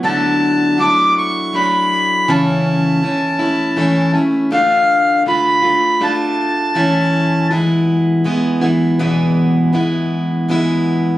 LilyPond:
<<
  \new Staff \with { instrumentName = "Accordion" } { \time 3/4 \key e \mixolydian \tempo 4 = 80 a''4 d'''8 cis'''8 b''4 | a''2~ a''8 r8 | f''4 b''4 a''4~ | a''4 r2 |
r2. | }
  \new Staff \with { instrumentName = "Steel-string acoustic guitar" } { \time 3/4 \key e \mixolydian <d fis a d' e'>4 <fis a d' e'>4 <fis a d' e'>4 | <cis e a cis' e'>4 <e a cis' e'>8 <a cis' e'>8 <e a cis' e'>8 <a cis' e'>8 | <d a d' f'>4 <d a d' f'>8 <a d' f'>8 <d a d' f'>4 | <e a cis' e'>4 <e gis b e'>4 <e gis b e'>8 <e gis b e'>8 |
<e, b, e gis b e'>4 <e gis b e'>4 <e gis b e'>4 | }
>>